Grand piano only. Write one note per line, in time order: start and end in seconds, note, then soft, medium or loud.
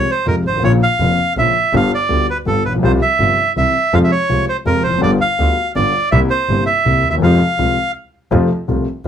0.26 0.42 F2 soft
0.26 0.42 C3 soft
0.26 0.42 F3 soft
0.26 0.42 G#3 soft
0.26 0.42 F4 soft
0.49 0.54 G1 soft
0.55 0.59 G#1 soft
0.55 0.63 A1 soft
0.63 0.79 A#1 medium
0.63 0.79 A#2 medium
0.63 0.79 C#3 medium
0.63 0.79 F3 soft
0.63 0.79 A#3 soft
0.63 0.79 F4 medium
1.00 1.16 F1 soft
1.00 1.16 F2 soft
1.00 1.16 C#3 soft
1.00 1.15 F3 soft
1.00 1.16 A#3 soft
1.00 1.16 F4 soft
1.37 1.52 A#1 soft
1.37 1.52 A#2 soft
1.37 1.52 C#3 soft
1.37 1.52 F3 soft
1.37 1.52 A#3 soft
1.37 1.52 F4 soft
1.73 1.89 G1 medium
1.73 1.89 G2 medium
1.73 1.89 D3 soft
1.73 1.89 G3 soft
1.73 1.89 B3 medium
1.73 1.89 F4 medium
2.09 2.25 D2 soft
2.09 2.25 D3 soft
2.09 2.25 G3 soft
2.09 2.25 B3 soft
2.09 2.25 F4 soft
2.46 2.61 G1 soft
2.46 2.62 G2 soft
2.46 2.61 D3 soft
2.46 2.61 G3 soft
2.46 2.61 B3 soft
2.46 2.62 F4 soft
2.69 2.73 A1 soft
2.74 2.78 A#1 soft
2.79 2.83 B1 soft
2.83 2.98 C2 medium
2.83 2.98 C3 medium
2.83 2.98 F3 soft
2.83 2.98 G3 medium
2.83 2.98 F4 medium
3.20 3.35 G1 soft
3.20 3.35 G2 soft
3.20 3.35 C3 soft
3.20 3.35 F3 soft
3.20 3.35 G3 soft
3.20 3.35 F4 soft
3.56 3.71 C2 soft
3.56 3.72 C3 soft
3.56 3.71 E3 soft
3.56 3.72 G3 soft
3.56 3.72 E4 soft
3.93 4.08 F2 medium
3.93 4.08 C3 soft
3.93 4.08 F3 medium
3.93 4.09 G#3 soft
3.93 4.08 F4 medium
4.29 4.45 C2 soft
4.29 4.45 C3 soft
4.29 4.45 F3 soft
4.29 4.45 G#3 soft
4.29 4.45 F4 soft
4.65 4.81 F2 soft
4.65 4.81 C3 soft
4.65 4.81 F3 soft
4.65 4.81 G#3 soft
4.65 4.81 F4 soft
4.89 4.93 E2 soft
4.93 4.98 F2 soft
4.99 5.18 G1 medium
4.99 5.03 F#2 medium
4.99 5.18 G2 medium
4.99 5.17 D3 medium
4.99 5.17 G3 medium
4.99 5.17 B3 medium
4.99 5.18 F4 medium
5.39 5.54 D2 soft
5.39 5.54 D3 soft
5.39 5.54 G3 soft
5.39 5.54 B3 soft
5.39 5.55 F4 soft
5.75 5.91 G1 soft
5.75 5.91 G2 soft
5.75 5.91 D3 soft
5.75 5.91 G3 soft
5.75 5.91 B3 soft
5.75 5.91 F4 soft
6.12 6.28 C2 medium
6.12 6.28 C3 medium
6.12 6.27 G3 soft
6.12 6.27 A#3 medium
6.12 6.28 E4 medium
6.49 6.64 G1 soft
6.49 6.64 G2 soft
6.49 6.64 C3 soft
6.49 6.64 G3 soft
6.49 6.64 A#3 soft
6.49 6.64 E4 soft
6.85 7.01 C2 soft
6.85 7.01 C3 soft
6.85 7.01 G3 soft
6.85 7.01 A#3 soft
6.85 7.01 E4 soft
7.09 7.13 D2 soft
7.13 7.17 D#2 soft
7.18 7.22 E2 medium
7.22 7.37 F2 medium
7.22 7.37 C3 medium
7.22 7.37 F3 medium
7.22 7.37 G#3 soft
7.22 7.37 F4 medium
7.59 7.74 C2 soft
7.59 7.74 C3 soft
7.59 7.74 F3 soft
7.59 7.74 G#3 soft
7.59 7.74 F4 soft
8.31 8.47 F2 medium
8.31 8.47 C3 medium
8.31 8.47 F3 medium
8.31 8.47 A3 medium
8.31 8.47 F4 medium
8.68 8.84 C2 soft
8.68 8.84 C3 soft
8.68 8.84 F3 soft
8.68 8.84 A3 soft
8.68 8.84 F4 soft